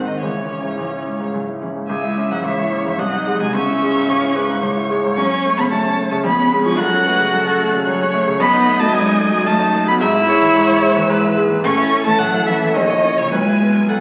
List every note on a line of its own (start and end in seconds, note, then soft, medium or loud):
0.00 0.20 G#2 medium
0.00 0.23 D#3 soft
0.00 0.16 C4 soft
0.00 0.22 C4 soft
0.00 0.24 D#4 soft
0.07 0.21 D#3 soft
0.07 0.21 D#5 medium
0.21 0.76 C#2 soft
0.21 0.72 E3 soft
0.21 1.69 C#4 soft
0.21 1.31 C#5 medium
0.37 0.59 E4 soft
0.50 0.72 C#4 soft
0.64 0.86 G#2 soft
0.77 1.32 C#2 soft
0.77 0.85 E3 medium
0.91 1.14 E4 soft
1.05 1.32 G#3 medium
1.05 1.28 C#4 soft
1.20 1.42 G#2 soft
1.33 1.88 C#2 soft
1.33 1.41 F#3 soft
1.47 1.70 E4 soft
1.61 1.69 E3 soft
1.61 1.84 C#4 soft
1.75 1.89 G#2 soft
1.88 2.42 C#2 medium
1.88 2.31 G#3 medium
1.88 2.45 E5 medium
1.88 2.27 G#5 medium
2.03 2.25 E4 medium
2.17 2.39 C#4 medium
2.29 2.52 G#2 soft
2.29 2.42 F#3 medium
2.29 2.36 F#5 medium
2.43 2.97 C#2 medium
2.43 2.83 E3 medium
2.43 3.00 C#5 medium
2.43 2.85 E5 medium
2.58 2.80 E4 medium
2.71 2.93 C#4 medium
2.84 2.99 G#2 soft
2.84 2.97 E3 medium
2.84 3.01 E5 medium
2.97 3.53 C2 medium
2.97 3.41 F#3 medium
2.97 3.54 D#5 medium
2.97 3.41 F#5 medium
3.13 3.35 D#4 medium
3.27 3.49 G#3 medium
3.40 3.55 C3 medium
3.40 3.55 G#3 medium
3.40 3.55 G#5 loud
3.54 4.08 C#2 medium
3.54 4.89 C#4 loud
3.54 4.11 E5 medium
3.54 4.87 C#6 loud
3.68 3.90 E4 medium
3.82 4.04 G#3 medium
3.95 4.17 G#2 medium
4.09 4.61 C#2 medium
4.09 4.37 C#5 medium
4.23 4.44 E4 medium
4.35 4.57 G#3 medium
4.35 4.63 B4 medium
4.49 4.71 G#2 medium
4.63 5.15 C#2 medium
4.63 6.25 C#5 medium
4.77 4.98 E4 medium
4.90 5.12 G#3 medium
5.04 5.17 G#2 medium
5.16 5.70 F#2 medium
5.16 5.58 C#4 loud
5.16 5.54 C#6 loud
5.31 5.52 C#4 medium
5.45 5.66 A3 medium
5.57 5.79 C#3 medium
5.57 5.69 B3 medium
5.57 5.63 B5 loud
5.70 6.23 F#2 medium
5.70 6.09 A3 medium
5.70 6.09 A5 loud
5.85 6.06 C#4 medium
5.98 6.19 A3 medium
6.10 6.24 C#3 medium
6.10 6.16 A3 medium
6.10 6.16 A5 medium
6.24 6.77 F2 medium
6.24 6.64 B3 medium
6.24 6.80 G#4 medium
6.24 6.64 B5 loud
6.39 6.60 C#4 medium
6.53 6.74 G#3 medium
6.65 6.79 F3 medium
6.65 6.80 C#4 medium
6.65 6.78 C#6 loud
6.79 7.31 F#2 medium
6.79 8.13 F#4 loud
6.79 7.07 A4 medium
6.79 8.11 F#6 loud
6.93 7.14 C#4 medium
7.06 7.28 A3 medium
7.06 7.34 B4 medium
7.20 7.41 C#3 medium
7.33 7.86 F#2 medium
7.33 7.85 A4 loud
7.47 7.68 C#4 medium
7.61 7.82 A3 medium
7.74 7.95 C#3 medium
7.86 8.38 F#2 medium
7.86 8.41 C#5 loud
8.01 8.22 C#4 medium
8.14 8.35 A3 medium
8.27 8.40 C#3 medium
8.40 8.91 F#2 medium
8.40 8.82 B3 loud
8.40 10.00 D#5 loud
8.40 8.81 B5 loud
8.53 8.74 D#4 medium
8.66 8.87 A3 medium
8.80 9.01 F#3 medium
8.80 8.93 A3 loud
8.80 8.94 A5 loud
8.93 9.44 F#2 medium
8.93 9.32 G#3 loud
8.93 9.32 G#5 loud
9.05 9.27 D#4 medium
9.19 9.41 A3 medium
9.32 9.54 F#3 medium
9.32 9.46 G#3 loud
9.32 9.48 G#5 loud
9.46 9.99 F#2 medium
9.46 9.87 A3 medium
9.46 9.88 A5 loud
9.59 9.82 D#4 medium
9.73 9.95 A3 medium
9.86 10.01 F#3 medium
9.86 10.01 B3 loud
9.86 9.93 B5 loud
10.00 10.54 G#2 loud
10.00 11.34 E4 loud
10.00 10.08 E5 loud
10.00 11.35 E6 loud
10.14 10.36 E4 medium
10.27 10.49 G#3 medium
10.27 11.11 C#5 loud
10.41 10.63 E3 medium
10.55 11.08 G#2 medium
10.68 10.90 E4 medium
10.82 11.04 G#3 medium
10.96 11.18 E3 medium
11.09 11.62 G#2 medium
11.09 11.63 B4 medium
11.24 11.45 E4 medium
11.37 11.59 G#3 medium
11.51 11.64 E3 medium
11.64 12.17 A2 medium
11.64 12.02 C#4 loud
11.64 12.76 A4 loud
11.64 12.02 C#6 loud
11.78 12.00 E4 medium
11.92 12.14 C#4 medium
12.06 12.28 E3 medium
12.06 12.11 A3 loud
12.06 12.20 A5 loud
12.19 12.73 A2 medium
12.19 12.49 F#3 loud
12.19 12.48 F#5 loud
12.33 12.55 E4 medium
12.46 12.76 E3 medium
12.46 12.69 C#4 medium
12.46 12.76 E5 loud
12.61 12.75 E3 medium
12.74 13.30 A#1 medium
12.74 13.16 D#3 medium
12.74 13.33 C#5 medium
12.74 13.19 D#5 loud
12.90 13.12 E4 medium
13.03 13.26 C#4 medium
13.16 13.32 A#2 medium
13.16 13.32 C#3 medium
13.16 13.31 C#5 loud
13.31 13.88 B1 medium
13.31 13.90 G#3 loud
13.31 13.83 B4 medium
13.31 13.90 G#5 medium
13.47 13.69 E4 medium
13.61 13.83 B3 medium
13.75 13.97 F#2 medium
13.88 14.00 B1 medium
13.88 14.00 F#3 medium
13.88 13.96 A4 medium
13.88 14.00 F#5 medium